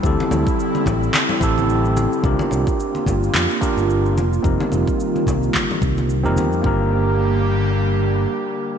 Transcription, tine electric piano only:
X:1
M:4/4
L:1/16
Q:"Swing 16ths" 1/4=109
K:Gm
V:1 name="Tine electric piano"
[C=EGA]8- [CEGA]2 [CEGA]6 | [DFGB]8- [DFGB]2 [DFGB]4 z2 | [CEGB]8- [CEGB]2 z3 [CEGB]3 | [B,DGB]16 |]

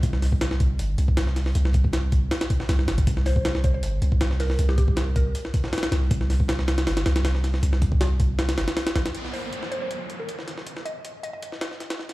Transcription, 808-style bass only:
X:1
M:4/4
L:1/16
Q:1/4=158
K:Cm
V:1 name="808-style bass" clef=bass
C,,8 G,,,2 C,,6 | C,,8 z4 C,,2 G,,, G,,, | C,,8 G,,,2 C,,6 | C,,8 z6 C,,2 |
C,,8 G,,,2 C,,6 | C,,8- C,,2 G,,, z3 B,,, z | z16 | z16 |]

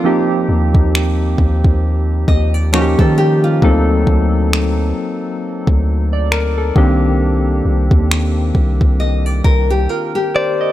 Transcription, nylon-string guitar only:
X:1
M:4/4
L:1/16
Q:"Swing 16ths" 1/4=67
K:Cdor
V:1 name="Nylon-string guitar"
F z8 z e d _d A G F- | F z12 z3 | z8 e d B G F G3 |]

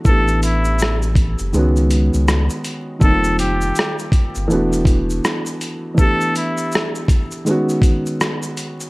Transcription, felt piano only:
X:1
M:4/4
L:1/8
Q:"Swing 16ths" 1/4=81
K:Aphr
V:1 name="Felt piano"
[E,A,=B,DG]4 [^D,^G,B,^C^F]4 | [_E,G,B,C_EF]4 [=E,A,=B,D^F]4 | [E,A,=B,DG]4 [^D,^G,B,^C^F]4 |]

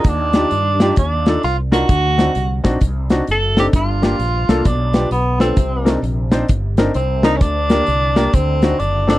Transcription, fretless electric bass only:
X:1
M:4/4
L:1/8
Q:"Swing" 1/4=130
K:Dphr
V:1 name="Fretless electric bass" clef=bass
E,,2 G,,2 E,,2 C,,2 | D,,2 C,, B,,, C,,2 ^F,,,2 | G,,,2 B,,, C,, =B,,,2 B,,,2 | C,,2 B,,,2 G,,,2 C,,2 |
D,,2 C,,2 D,,2 ^F,,,2 |]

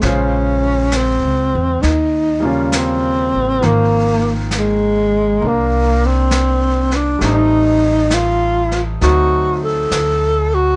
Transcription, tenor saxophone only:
X:1
M:4/4
L:1/8
Q:"Swing" 1/4=67
K:Ablyd
V:1 name="Tenor saxophone"
_D2 C2 E D C2 | B, z A,2 B, C2 D | E2 F z ^F =A2 F |]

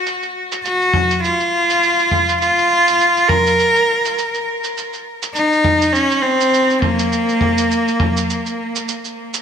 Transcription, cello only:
X:1
M:4/4
L:1/8
Q:"Swing 16ths" 1/4=102
K:Bbm
V:1 name="Cello"
z2 G2 F4 | F3 B4 z | z2 E2 D C2 B,- | B,6 z2 |]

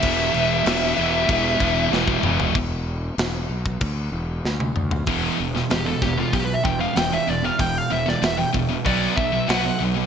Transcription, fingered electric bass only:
X:1
M:4/4
L:1/8
Q:1/4=95
K:Em
V:1 name="Fingered electric bass" clef=bass
E,,, E,,, E,,, E,,, E,,, E,,, E,,, E,,, | E,,,2 E,,, B,,, D,, E,,, D,, D,, | E,,, E,,, E,,, E,,, B,,, E,,, E,,, E,,, | E,,, E,,, E,,, E,,, B,,, B,,, B,,, B,,, |]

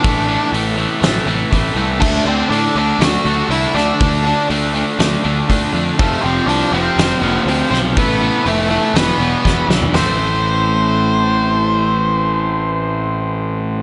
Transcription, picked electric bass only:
X:1
M:4/4
L:1/8
Q:1/4=121
K:Am
V:1 name="Picked electric bass" clef=bass
A,,,2 A,,,2 A,,, A,,, A,,, C,, | D,, D,, A,, D,, D,, D,, C,, D,, | D,,2 D,,2 D,, D,, D,, F,, | F,,, F,,, C,, F,,, F,,, F,,, D,, B,,, |
A,,,2 F,,,2 E,,, E,,, E,,, B,,, | A,,,8- | A,,,8 |]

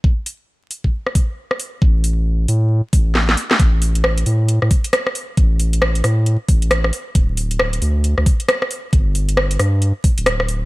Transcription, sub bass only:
X:1
M:4/4
L:1/16
Q:"Swing 16ths" 1/4=135
K:Gdor
V:1 name="Sub bass" clef=bass
z16 | A,,,6 A,,3 z A,,,4 z2 | A,,,6 A,,3 A,, z6 | A,,,6 A,,3 z A,,,4 z2 |
D,,,6 D,,3 D,, z6 | G,,,6 G,,3 z2 D,,,4- D,,, |]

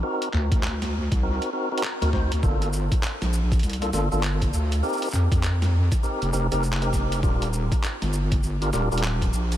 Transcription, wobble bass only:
X:1
M:4/4
L:1/16
Q:"Swing 16ths" 1/4=100
K:Gm
V:1 name="Wobble bass" clef=bass
z2 D,, D,,4 C,,2 z4 D,,2 D,, | G,,,3 z2 B,,,3 C,,2 G,,, G,,,3 D,,2 | z2 F,, F,,4 z2 F,,, F,,, F,,,3 F,,,2 | E,,,3 z2 G,,,3 G,,,2 E,,, E,,,3 B,,,2 |]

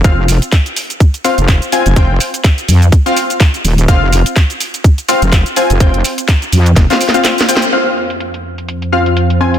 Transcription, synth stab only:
X:1
M:4/4
L:1/16
Q:"Swing 16ths" 1/4=125
K:Fm
V:1 name="Synth stab"
[CFf] z8 z [CFf] z3 [CFa] z | [CFg] z8 [CFf] z6 | [CFf] z8 z [CFf] z3 [CFa] z | [CFg] z8 [CFf] z [CFf]2 z [CFg] z |
[CFf] z8 z [CFf] z3 [CFa] z |]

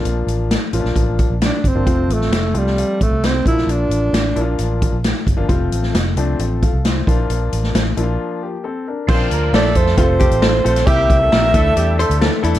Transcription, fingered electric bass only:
X:1
M:4/4
L:1/16
Q:1/4=133
K:Bblyd
V:1 name="Fingered electric bass" clef=bass
B,,,2 A,,,3 z A,,, B,,, A,,,3 B,,,2 z G,,, G,,, | F,,,2 A,,,2 F,,,2 C,,3 z A,,, C,,3 B,,,2 | B,,,2 A,,,2 A,,,2 B,,,2 A,,,3 B,,,2 z G,,, G,,, | F,,,2 A,,,2 F,,,2 C,,2 A,,,3 C,,3 B,,,2 |
B,,,2 A,,,2 A,,,2 B,,,2 z8 | B,,,2 D,,2 B,,,2 F,,2 F,,,3 A,,,3 B,,,2 | C,,2 C,,2 B,,,2 D,,2 E,,3 D,,2 z E,, B,,, |]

